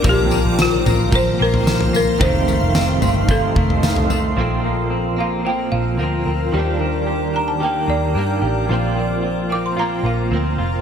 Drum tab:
TB |x-x-x-x-x---x-x-|x-x-x-x-x---x-x-|----------------|----------------|
SD |----o-------o---|----o-------o---|----------------|----------------|
FT |o-----o----o-o--|o-----o----o-oo-|----------------|----------------|
BD |o-------o-------|o-------o-o-----|----------------|----------------|

TB |----------------|
SD |----------------|
FT |----------------|
BD |----------------|